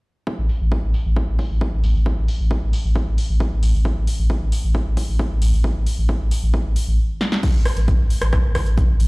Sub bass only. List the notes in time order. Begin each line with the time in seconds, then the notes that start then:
0.38 A1
0.61 A1
0.83 A1
1.05 A1
1.28 A1
1.50 A1
1.72 A1
1.84 A1
1.95 A1
2.17 A1
2.40 A1
2.62 A1
2.85 A1
3.07 A1
3.29 A1
3.52 A1
3.63 A1
3.74 A1
3.97 A1
4.19 A1
4.41 A1
4.64 A1
4.86 A1
5.08 A1
5.31 A1
5.42 A1
5.53 A1
5.76 A1
5.98 A1
6.20 A1
6.43 A1
6.65 A1
6.87 A1
7.55 A1
7.77 A1
7.99 A1
8.22 A1
8.44 A1
8.67 A1
8.89 A1
9.00 A1